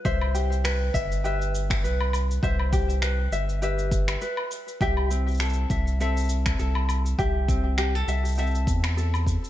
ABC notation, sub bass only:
X:1
M:4/4
L:1/8
Q:"Swing 16ths" 1/4=101
K:C
V:1 name="Sub bass" clef=bass
C,,3 G,,,3 C,,2 | C,,3 G,,,3 z2 | C,,3 C,,3 C,,2 | C,,3 C,,2 E,,2 z |]